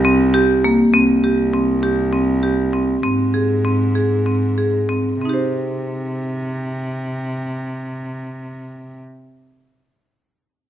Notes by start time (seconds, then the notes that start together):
Already playing: C2
0.05 C4
0.34 G4
0.64 A#3
0.94 C2 C4
1.24 G4
1.54 C4
1.83 G4
2.13 C4
2.43 G4
2.73 C4
3.03 G#2 C4
3.34 G#4
3.65 C4
3.95 G#4
4.26 C4
4.58 G#4
4.89 C4
5.21 C3 C4
5.25 D#4 G4
5.34 C5